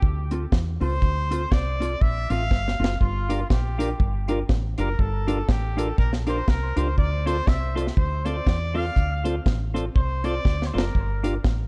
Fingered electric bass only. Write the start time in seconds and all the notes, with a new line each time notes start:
0.02 D2
0.52 E2
0.81 C#2
1.02 D2
1.52 C2
2.01 A#1
2.30 A1
2.51 G1
2.79 F#1
3.01 G1
3.51 A#1
4.00 G1
4.49 A1
4.78 F#1
4.99 G1
5.49 A1
5.98 A#1
6.48 C2
6.77 C#2
6.98 D2
7.47 C2
7.97 D2
8.47 E2
8.96 D2
9.46 A1
9.96 C2
10.45 D2
10.75 F#1
10.95 G1
11.44 A1